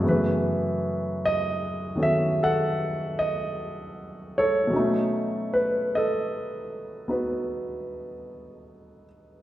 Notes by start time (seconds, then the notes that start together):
0.00 F#2 C#3 A3
0.04 E3 B3
0.09 B4
1.25 D#5
1.95 D#3 B3 C#4 F#4 A4
2.03 E5
2.43 A4 F#5
3.19 D#5
4.38 A4 C#5
4.67 B2 F#3
4.73 C#4 D#4
4.78 A3
5.54 B4
5.95 A4 D#5
7.08 B3 D#4 F#4 B4